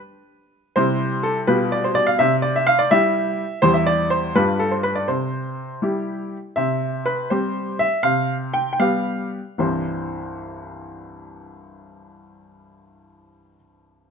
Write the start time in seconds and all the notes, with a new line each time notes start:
0.76 C3 G3 E4 G4 C5
1.23 A4
1.47 B2 G3 F4 G4 B4
1.72 D5
1.84 C5
1.95 D5
2.07 F5
2.19 C3 E5
2.42 D5
2.56 E5
2.67 F5
2.79 D5
2.91 G3 E4 G4 E5
3.62 E2 G3 E4 G4 C5
3.74 E5
3.87 D5
4.10 C5
4.35 G2 G3 F4 G4 B4
4.59 A4
4.71 C5
4.83 B4
4.95 D5
5.08 C3 C5
5.82 G3 E4 G4
6.56 C3 E5
7.06 B4
7.30 G3 C4 G4 C5
7.79 E5
8.03 C3 F5
8.54 G5
8.73 G5
8.80 G3 B3 G4 F5
9.58 C2 G2 E3 G3 C4 E4 C5